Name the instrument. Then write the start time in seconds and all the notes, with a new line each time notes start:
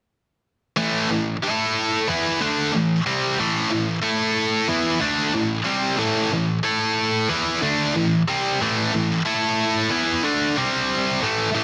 distorted electric guitar
0.77 A2 E3 A3
1.09 A2 E3
1.43 A3 E4 A4
2.08 E3 B3 E4
2.41 D3 A3 D4
2.74 A2 E3
3.06 C3 G3 C4
3.39 A2 E3 A3
3.71 A2 E3
4.03 A3 E4 A4
4.68 E3 B3 E4
5.00 D3 A3 D4
5.34 A2 E3
5.65 C3 G3 C4
5.98 A2 E3 A3
6.32 A2 E3
6.63 A3 E4 A4
7.29 E3 B3 E4
7.61 D3 A3 D4
7.95 A2 E3
8.28 C3 G3 C4
8.61 A2 E3 A3
8.92 A2 E3
9.26 A3 E4 A4
9.90 E3 B3 E4
10.24 D3 A3 D4
10.57 C3 G3 C4
11.21 A2 E3 A3
11.55 A2 E3 A3